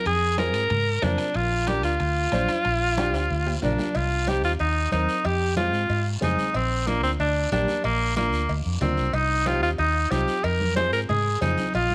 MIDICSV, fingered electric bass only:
0, 0, Header, 1, 2, 480
1, 0, Start_track
1, 0, Tempo, 324675
1, 84, Time_signature, 4, 2, 24, 8
1, 17664, End_track
2, 0, Start_track
2, 0, Title_t, "Fingered electric bass"
2, 0, Program_c, 0, 33
2, 89, Note_on_c, 0, 41, 101
2, 806, Note_off_c, 0, 41, 0
2, 806, Note_on_c, 0, 44, 83
2, 997, Note_off_c, 0, 44, 0
2, 1046, Note_on_c, 0, 44, 84
2, 1429, Note_off_c, 0, 44, 0
2, 1522, Note_on_c, 0, 41, 92
2, 1715, Note_off_c, 0, 41, 0
2, 1999, Note_on_c, 0, 34, 98
2, 2712, Note_off_c, 0, 34, 0
2, 2712, Note_on_c, 0, 38, 85
2, 2908, Note_off_c, 0, 38, 0
2, 2960, Note_on_c, 0, 38, 84
2, 3345, Note_off_c, 0, 38, 0
2, 3434, Note_on_c, 0, 34, 97
2, 3630, Note_off_c, 0, 34, 0
2, 3925, Note_on_c, 0, 34, 99
2, 4641, Note_off_c, 0, 34, 0
2, 4641, Note_on_c, 0, 38, 80
2, 4833, Note_off_c, 0, 38, 0
2, 4887, Note_on_c, 0, 38, 87
2, 5269, Note_off_c, 0, 38, 0
2, 5368, Note_on_c, 0, 34, 91
2, 5558, Note_off_c, 0, 34, 0
2, 5849, Note_on_c, 0, 36, 101
2, 6559, Note_off_c, 0, 36, 0
2, 6559, Note_on_c, 0, 39, 78
2, 6752, Note_off_c, 0, 39, 0
2, 6804, Note_on_c, 0, 39, 82
2, 7187, Note_off_c, 0, 39, 0
2, 7282, Note_on_c, 0, 39, 90
2, 7474, Note_off_c, 0, 39, 0
2, 7764, Note_on_c, 0, 41, 97
2, 8479, Note_off_c, 0, 41, 0
2, 8479, Note_on_c, 0, 44, 87
2, 8671, Note_off_c, 0, 44, 0
2, 8716, Note_on_c, 0, 44, 88
2, 9102, Note_off_c, 0, 44, 0
2, 9194, Note_on_c, 0, 41, 93
2, 9389, Note_off_c, 0, 41, 0
2, 9679, Note_on_c, 0, 34, 95
2, 10396, Note_off_c, 0, 34, 0
2, 10396, Note_on_c, 0, 38, 80
2, 10589, Note_off_c, 0, 38, 0
2, 10636, Note_on_c, 0, 38, 88
2, 11021, Note_off_c, 0, 38, 0
2, 11116, Note_on_c, 0, 34, 92
2, 11309, Note_off_c, 0, 34, 0
2, 11596, Note_on_c, 0, 34, 93
2, 12315, Note_off_c, 0, 34, 0
2, 12315, Note_on_c, 0, 38, 83
2, 12509, Note_off_c, 0, 38, 0
2, 12555, Note_on_c, 0, 38, 89
2, 12749, Note_off_c, 0, 38, 0
2, 12801, Note_on_c, 0, 41, 78
2, 13016, Note_off_c, 0, 41, 0
2, 13033, Note_on_c, 0, 38, 83
2, 13252, Note_off_c, 0, 38, 0
2, 13273, Note_on_c, 0, 36, 78
2, 13492, Note_off_c, 0, 36, 0
2, 13503, Note_on_c, 0, 36, 90
2, 14229, Note_off_c, 0, 36, 0
2, 14229, Note_on_c, 0, 39, 84
2, 14426, Note_off_c, 0, 39, 0
2, 14470, Note_on_c, 0, 39, 80
2, 14857, Note_off_c, 0, 39, 0
2, 14955, Note_on_c, 0, 36, 90
2, 15149, Note_off_c, 0, 36, 0
2, 15436, Note_on_c, 0, 41, 97
2, 16164, Note_off_c, 0, 41, 0
2, 16164, Note_on_c, 0, 44, 79
2, 16354, Note_off_c, 0, 44, 0
2, 16400, Note_on_c, 0, 44, 84
2, 16784, Note_off_c, 0, 44, 0
2, 16882, Note_on_c, 0, 41, 92
2, 17073, Note_off_c, 0, 41, 0
2, 17368, Note_on_c, 0, 34, 100
2, 17664, Note_off_c, 0, 34, 0
2, 17664, End_track
0, 0, End_of_file